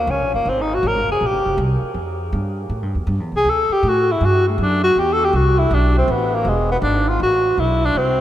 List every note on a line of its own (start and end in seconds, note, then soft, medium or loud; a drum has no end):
0.00 0.12 A#3 medium
0.07 0.20 C#2 loud
0.07 0.34 C#4 medium
0.20 0.33 A#1 medium
0.34 0.45 F#1 medium
0.34 0.50 A#3 medium
0.45 0.82 G#1 medium
0.45 0.63 C4 medium
0.61 0.76 D#4 medium
0.74 0.89 F#4 medium
0.83 0.95 A1 medium
0.87 1.10 A#4 loud
0.95 1.08 G#1 medium
1.08 1.20 F#1 medium
1.08 1.28 G#4 medium
1.21 1.33 A#1 medium
1.26 1.61 G4 medium
1.33 1.45 G1 medium
1.46 1.57 F1 medium
1.58 1.81 C2 loud
1.82 muted upright bass stroke soft
1.94 2.31 F2 medium
2.33 2.69 G2 medium
2.70 2.83 A2 medium
2.83 2.94 G2 medium
2.95 3.06 E2 medium
3.07 3.20 G2 medium
3.20 3.31 E2 medium
3.32 3.44 C2 medium
3.36 3.51 G#4 loud
3.45 3.68 D2 medium
3.49 3.74 A4 loud
3.69 3.90 G4 loud
3.69 muted upright bass stroke soft
3.83 4.19 A2 medium
3.88 4.13 F#4 medium
4.12 4.26 E4 medium
4.21 4.57 G2 medium
4.25 4.47 F#4 medium
4.48 4.63 A3 soft
4.58 4.94 F#2 medium
4.58 4.83 D4 medium
4.84 5.00 F#4 loud
4.96 5.32 E2 medium
4.96 5.14 G4 medium
5.13 5.26 A4 loud
5.24 5.37 G4 medium
5.33 5.69 C2 loud
5.33 5.60 F#4 medium
5.59 5.76 E4 medium
5.71 6.07 B1 loud
5.71 5.97 D4 medium
5.98 6.13 C4 medium
6.08 6.44 A1 medium
6.08 6.35 B3 medium
6.34 6.49 A#3 loud
6.45 6.81 E1 medium
6.45 6.71 G#3 medium
6.71 6.77 B3 medium
6.82 7.19 G#1 loud
6.82 7.10 D4 medium
7.08 7.21 F4 medium
7.20 7.57 A1 medium
7.20 7.61 F#4 medium
7.57 7.94 B1 medium
7.57 7.87 E4 medium
7.85 7.99 D4 medium
7.95 8.21 C2 medium
7.95 8.21 C4 medium